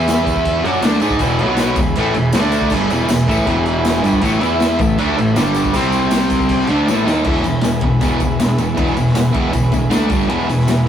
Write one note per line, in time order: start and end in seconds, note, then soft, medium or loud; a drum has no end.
0.00 0.60 E2 loud
0.00 0.64 E3 medium
0.00 0.64 B3 medium
0.00 0.63 E4 medium
0.00 0.64 E4 medium
0.00 0.63 B4 medium
0.00 0.63 E5 medium
0.08 snare loud
0.08 tambourine loud
0.08 crash medium
0.17 tambourine soft
0.27 kick medium
0.27 tambourine medium
0.27 crash medium
0.36 kick medium
0.45 kick medium
0.45 tambourine soft
0.45 crash medium
0.64 0.81 F#2 medium
0.64 0.82 F#3 medium
0.64 0.83 C#4 loud
0.64 1.21 D4 medium
0.64 0.83 F#4 loud
0.64 1.21 A4 medium
0.64 1.22 D5 medium
0.64 tambourine soft
0.64 crash medium
0.73 tambourine soft
0.82 1.00 D2 medium
0.82 1.01 D3 medium
0.82 1.01 A3 medium
0.82 1.02 D4 loud
0.82 snare loud
0.82 tambourine medium
0.82 crash medium
0.93 snare soft
1.00 1.19 G#2 medium
1.00 1.20 G#3 medium
1.00 1.20 D#4 medium
1.00 tambourine medium
1.00 crash medium
1.04 1.21 G#4 loud
1.10 kick loud
1.10 tambourine soft
1.19 1.38 E1 medium
1.19 1.39 E2 loud
1.19 1.39 B2 medium
1.19 1.42 E3 medium
1.19 kick loud
1.19 tambourine medium
1.19 crash medium
1.37 1.74 B1 medium
1.37 1.76 B3 medium
1.37 1.77 F#4 medium
1.37 1.78 B4 medium
1.37 crash medium
1.42 1.78 B2 loud
1.42 1.78 F#3 medium
1.42 1.79 B3 loud
1.57 snare loud
1.57 tambourine loud
1.57 crash medium
1.76 1.94 E1 medium
1.76 1.93 E2 medium
1.76 1.93 B2 medium
1.76 2.35 E4 medium
1.76 2.34 G#4 medium
1.76 kick loud
1.76 tambourine medium
1.76 crash medium
1.80 2.35 B4 medium
1.95 2.13 A1 loud
1.95 2.15 A2 medium
1.95 2.15 E3 medium
1.95 2.16 A3 loud
1.95 tambourine soft
1.95 crash medium
2.14 2.32 E1 medium
2.14 2.30 E2 medium
2.14 2.30 B2 medium
2.14 tambourine soft
2.14 crash medium
2.32 2.69 D2 medium
2.32 2.71 D3 medium
2.32 2.72 A3 loud
2.32 snare loud
2.32 tambourine medium
2.32 crash medium
2.36 2.72 D4 loud
2.36 2.74 D4 medium
2.36 2.73 A4 medium
2.36 2.74 D5 medium
2.52 tambourine medium
2.52 crash medium
2.62 kick medium
2.70 2.89 G1 loud
2.70 2.90 G2 medium
2.70 2.91 D3 medium
2.70 kick loud
2.70 tambourine medium
2.70 crash medium
2.74 2.91 G3 loud
2.74 4.21 E4 medium
2.74 4.21 G#4 medium
2.74 4.22 B4 medium
2.90 3.07 E1 medium
2.90 3.09 E2 medium
2.90 3.10 B2 medium
2.90 3.10 E3 loud
2.90 tambourine medium
2.90 crash medium
3.08 3.26 E1 medium
3.08 3.25 E2 medium
3.08 3.25 B2 medium
3.08 snare loud
3.08 tambourine loud
3.08 crash medium
3.20 tambourine soft
3.28 3.46 A1 medium
3.28 3.46 A2 medium
3.28 3.46 E3 medium
3.28 3.47 A3 medium
3.28 kick medium
3.28 tambourine medium
3.28 crash medium
3.38 kick medium
3.46 4.00 E1 loud
3.46 4.02 E2 medium
3.46 4.03 B2 loud
3.46 4.04 E3 loud
3.46 kick medium
3.46 tambourine soft
3.46 crash medium
3.66 3.85 E5 medium
3.66 tambourine soft
3.66 crash medium
3.85 snare loud
3.85 tambourine medium
3.85 crash medium
3.89 4.05 G#5 medium
3.94 snare soft
4.03 4.22 G1 loud
4.03 4.22 G2 medium
4.03 4.22 D3 loud
4.03 4.22 G3 medium
4.03 4.23 B5 medium
4.03 tambourine medium
4.03 crash medium
4.13 kick medium
4.21 4.40 A1 loud
4.21 4.40 A2 medium
4.21 4.39 E3 medium
4.21 4.41 A3 loud
4.21 kick loud
4.21 tambourine medium
4.21 crash medium
4.40 4.77 E2 medium
4.40 4.78 E3 medium
4.40 4.79 B3 medium
4.40 4.79 E4 loud
4.40 4.77 E4 medium
4.40 4.80 B4 medium
4.40 4.77 E5 medium
4.40 tambourine medium
4.40 crash medium
4.60 snare loud
4.60 tambourine loud
4.60 crash medium
4.78 4.97 A1 medium
4.78 4.95 A2 medium
4.78 4.95 E3 medium
4.78 5.36 E4 medium
4.78 5.35 A4 medium
4.78 5.36 E5 medium
4.78 kick loud
4.78 tambourine medium
4.78 crash medium
4.98 5.17 D2 loud
4.98 5.17 D3 medium
4.98 5.17 A3 loud
4.98 5.17 D4 loud
4.98 tambourine soft
4.98 crash medium
5.17 5.35 A1 medium
5.17 5.33 A2 medium
5.17 5.33 E3 medium
5.17 tambourine soft
5.17 crash medium
5.36 5.72 G1 medium
5.36 5.73 G2 medium
5.36 5.74 D3 loud
5.36 5.74 G3 loud
5.36 5.75 D4 medium
5.36 5.75 G4 medium
5.36 5.75 D5 medium
5.36 snare loud
5.36 tambourine loud
5.36 crash medium
5.47 snare soft
5.55 tambourine medium
5.55 crash medium
5.65 kick medium
5.74 6.65 C2 medium
5.74 6.68 C3 medium
5.74 6.69 G3 medium
5.74 6.67 C4 medium
5.74 6.69 C4 loud
5.74 6.68 G4 medium
5.74 6.68 C5 medium
5.74 kick medium
5.74 tambourine medium
5.74 crash medium
5.85 tambourine soft
5.92 tambourine medium
5.92 crash medium
6.03 tambourine soft
6.11 snare loud
6.11 tambourine loud
6.11 crash medium
6.30 kick medium
6.30 tambourine medium
6.30 crash medium
6.40 kick medium
6.40 tambourine soft
6.49 kick medium
6.49 tambourine soft
6.49 crash medium
6.62 tambourine soft
6.67 6.87 D2 loud
6.67 6.87 D3 medium
6.67 6.88 A3 loud
6.67 6.88 D4 loud
6.67 tambourine soft
6.67 crash medium
6.72 7.28 E4 medium
6.72 7.28 A4 medium
6.72 6.90 E5 medium
6.72 6.90 A5 medium
6.88 7.05 A1 medium
6.88 7.05 A2 loud
6.88 7.06 E3 medium
6.88 7.06 A3 medium
6.88 7.25 E5 medium
6.88 snare medium
6.88 tambourine medium
6.99 tambourine soft
7.05 7.24 D#2 medium
7.05 7.25 D#3 medium
7.05 7.25 A#3 medium
7.05 7.25 D#4 loud
7.05 snare medium
7.05 tambourine medium
7.25 7.43 E1 medium
7.25 7.43 E2 medium
7.25 7.43 B2 medium
7.25 7.44 E3 medium
7.25 kick loud
7.25 crash loud
7.30 9.90 E4 medium
7.30 9.90 G#4 medium
7.30 9.90 B4 medium
7.37 tambourine soft
7.44 7.63 E1 medium
7.44 7.62 E2 medium
7.44 7.62 B2 medium
7.44 ride medium
7.44 tambourine medium
7.61 7.82 E1 medium
7.61 7.81 E2 medium
7.61 7.81 B2 medium
7.61 snare loud
7.61 ride medium
7.61 tambourine loud
7.81 8.00 E1 medium
7.81 8.00 E2 medium
7.81 8.00 B2 medium
7.81 kick medium
7.81 ride medium
8.01 8.19 E1 medium
8.01 8.19 E2 medium
8.01 8.20 B2 loud
8.01 8.20 E3 loud
8.01 kick medium
8.01 ride medium
8.01 tambourine medium
8.20 8.38 E1 medium
8.20 8.38 E2 medium
8.20 8.39 B2 medium
8.20 kick medium
8.20 ride medium
8.20 tambourine medium
8.39 8.57 E1 medium
8.39 8.57 E2 medium
8.39 8.58 B2 medium
8.39 snare loud
8.39 ride medium
8.39 tambourine loud
8.51 tambourine soft
8.58 8.76 E1 medium
8.58 8.74 E2 medium
8.58 8.75 B2 medium
8.58 ride medium
8.58 tambourine medium
8.69 tambourine soft
8.75 8.94 E1 medium
8.75 8.94 E2 medium
8.75 8.95 B2 medium
8.75 8.95 E3 medium
8.75 kick loud
8.75 ride loud
8.88 tambourine soft
8.95 9.13 E1 medium
8.95 9.13 E2 medium
8.95 9.14 B2 medium
8.95 ride medium
8.95 tambourine medium
9.07 snare soft
9.14 9.33 E1 medium
9.14 9.31 E2 medium
9.14 9.32 B2 medium
9.14 snare loud
9.14 ride loud
9.14 tambourine loud
9.32 9.52 E1 medium
9.32 9.51 E2 medium
9.32 9.52 B2 loud
9.32 9.53 E3 loud
9.32 kick medium
9.32 ride medium
9.53 9.71 E1 medium
9.53 9.71 E2 medium
9.53 9.71 B2 medium
9.53 kick medium
9.53 ride medium
9.53 tambourine medium
9.64 tambourine soft
9.72 9.90 E1 medium
9.72 9.90 E2 medium
9.72 9.90 B2 medium
9.72 kick medium
9.72 ride medium
9.72 tambourine medium
9.90 10.10 D2 medium
9.90 10.09 D3 medium
9.90 10.09 A3 loud
9.90 10.09 D4 loud
9.90 snare loud
9.90 ride medium
9.90 tambourine loud
10.02 tambourine soft
10.09 10.28 G1 medium
10.09 10.28 G2 medium
10.09 10.28 D3 medium
10.09 10.29 G3 medium
10.09 kick loud
10.09 ride medium
10.09 tambourine medium
10.21 snare soft
10.21 tambourine soft
10.28 10.48 E1 loud
10.28 10.47 E2 medium
10.28 10.47 B2 medium
10.28 10.48 E3 medium
10.28 10.88 E4 medium
10.28 10.88 G#4 medium
10.28 10.88 B4 medium
10.28 ride medium
10.41 tambourine soft
10.48 10.67 E1 medium
10.48 10.66 E2 medium
10.48 10.66 B2 medium
10.48 ride medium
10.48 tambourine medium
10.59 snare soft
10.67 10.86 E1 medium
10.67 10.85 E2 medium
10.67 10.85 B2 medium
10.67 snare loud
10.67 ride medium
10.67 tambourine loud